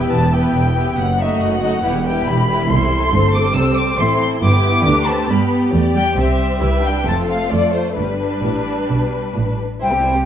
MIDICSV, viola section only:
0, 0, Header, 1, 2, 480
1, 0, Start_track
1, 0, Tempo, 433526
1, 1073, Time_signature, 4, 2, 24, 8
1, 6835, Tempo, 446097
1, 8275, Tempo, 458716
1, 11145, End_track
2, 0, Start_track
2, 0, Title_t, "Viola section"
2, 0, Program_c, 0, 48
2, 0, Note_on_c, 0, 59, 39
2, 0, Note_on_c, 0, 64, 41
2, 347, Note_off_c, 0, 64, 0
2, 349, Note_off_c, 0, 59, 0
2, 361, Note_on_c, 0, 64, 35
2, 363, Note_on_c, 0, 59, 37
2, 827, Note_off_c, 0, 64, 0
2, 828, Note_off_c, 0, 59, 0
2, 844, Note_on_c, 0, 59, 42
2, 845, Note_on_c, 0, 64, 42
2, 1073, Note_off_c, 0, 59, 0
2, 1073, Note_off_c, 0, 64, 0
2, 1323, Note_on_c, 0, 63, 42
2, 1324, Note_on_c, 0, 57, 43
2, 1783, Note_off_c, 0, 63, 0
2, 1787, Note_off_c, 0, 57, 0
2, 1797, Note_on_c, 0, 63, 41
2, 1799, Note_on_c, 0, 57, 44
2, 2028, Note_off_c, 0, 63, 0
2, 2029, Note_off_c, 0, 57, 0
2, 2035, Note_on_c, 0, 55, 39
2, 2035, Note_on_c, 0, 64, 45
2, 2264, Note_off_c, 0, 55, 0
2, 2264, Note_off_c, 0, 64, 0
2, 2277, Note_on_c, 0, 55, 38
2, 2277, Note_on_c, 0, 64, 36
2, 2740, Note_off_c, 0, 55, 0
2, 2740, Note_off_c, 0, 64, 0
2, 2754, Note_on_c, 0, 64, 49
2, 2758, Note_on_c, 0, 55, 47
2, 2981, Note_off_c, 0, 55, 0
2, 2983, Note_off_c, 0, 64, 0
2, 2995, Note_on_c, 0, 55, 47
2, 2995, Note_on_c, 0, 64, 52
2, 3434, Note_off_c, 0, 55, 0
2, 3434, Note_off_c, 0, 64, 0
2, 3469, Note_on_c, 0, 60, 46
2, 3472, Note_on_c, 0, 57, 52
2, 3705, Note_off_c, 0, 57, 0
2, 3709, Note_on_c, 0, 55, 49
2, 3929, Note_off_c, 0, 60, 0
2, 3942, Note_on_c, 0, 60, 54
2, 4410, Note_off_c, 0, 60, 0
2, 4421, Note_off_c, 0, 55, 0
2, 4426, Note_on_c, 0, 64, 54
2, 4429, Note_on_c, 0, 60, 54
2, 4881, Note_off_c, 0, 64, 0
2, 4893, Note_on_c, 0, 59, 55
2, 4895, Note_on_c, 0, 64, 51
2, 4906, Note_off_c, 0, 60, 0
2, 5120, Note_off_c, 0, 59, 0
2, 5134, Note_on_c, 0, 59, 62
2, 5369, Note_off_c, 0, 64, 0
2, 5373, Note_off_c, 0, 59, 0
2, 5378, Note_on_c, 0, 57, 52
2, 5379, Note_on_c, 0, 62, 52
2, 5610, Note_on_c, 0, 60, 58
2, 5621, Note_off_c, 0, 62, 0
2, 5857, Note_off_c, 0, 60, 0
2, 5860, Note_on_c, 0, 59, 56
2, 5861, Note_on_c, 0, 55, 55
2, 5862, Note_off_c, 0, 57, 0
2, 6085, Note_off_c, 0, 59, 0
2, 6098, Note_on_c, 0, 59, 47
2, 6103, Note_off_c, 0, 55, 0
2, 6337, Note_off_c, 0, 59, 0
2, 6343, Note_on_c, 0, 57, 58
2, 6432, Note_off_c, 0, 57, 0
2, 6589, Note_on_c, 0, 55, 59
2, 6678, Note_off_c, 0, 55, 0
2, 6829, Note_on_c, 0, 60, 49
2, 6830, Note_on_c, 0, 55, 54
2, 7299, Note_off_c, 0, 60, 0
2, 7303, Note_on_c, 0, 64, 47
2, 7542, Note_on_c, 0, 62, 54
2, 7544, Note_off_c, 0, 64, 0
2, 7765, Note_off_c, 0, 55, 0
2, 7781, Note_on_c, 0, 57, 45
2, 7781, Note_on_c, 0, 60, 46
2, 7782, Note_off_c, 0, 62, 0
2, 8253, Note_off_c, 0, 57, 0
2, 8266, Note_on_c, 0, 57, 51
2, 8271, Note_off_c, 0, 60, 0
2, 8746, Note_off_c, 0, 57, 0
2, 8747, Note_on_c, 0, 55, 46
2, 8747, Note_on_c, 0, 62, 45
2, 10467, Note_off_c, 0, 55, 0
2, 10467, Note_off_c, 0, 62, 0
2, 10691, Note_on_c, 0, 55, 48
2, 10797, Note_off_c, 0, 55, 0
2, 10799, Note_on_c, 0, 60, 43
2, 10911, Note_on_c, 0, 55, 46
2, 10918, Note_off_c, 0, 60, 0
2, 11029, Note_on_c, 0, 60, 43
2, 11032, Note_off_c, 0, 55, 0
2, 11145, Note_off_c, 0, 60, 0
2, 11145, End_track
0, 0, End_of_file